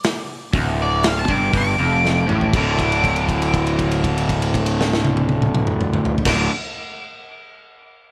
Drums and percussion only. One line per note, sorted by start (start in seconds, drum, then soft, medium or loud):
0.04 snare loud
0.04 open hi-hat medium
0.53 kick loud
0.53 open hi-hat medium
1.03 snare loud
1.03 open hi-hat medium
1.28 kick loud
1.53 kick loud
1.53 open hi-hat medium
2.05 snare medium
2.29 mid tom medium
2.41 floor tom medium
2.53 kick loud
2.53 crash medium
2.79 kick medium
2.79 crash soft
2.92 crash soft
3.04 kick medium
3.04 crash medium
3.16 crash soft
3.29 kick medium
3.29 crash soft
3.42 crash soft
3.54 kick medium
3.54 crash soft
3.67 crash soft
3.79 kick medium
3.79 crash soft
3.91 crash soft
4.04 kick medium
4.04 crash medium
4.18 crash soft
4.29 kick medium
4.29 crash medium
4.42 crash medium
4.54 kick medium
4.54 crash medium
4.66 crash medium
4.81 snare medium
4.93 snare medium
5.05 high tom medium
5.17 high tom medium
5.29 high tom medium
5.42 mid tom medium
5.55 mid tom loud
5.67 mid tom medium
5.81 mid tom medium
5.94 mid tom loud
6.05 floor tom loud
6.18 floor tom medium
6.25 kick loud
6.25 snare medium
6.25 crash loud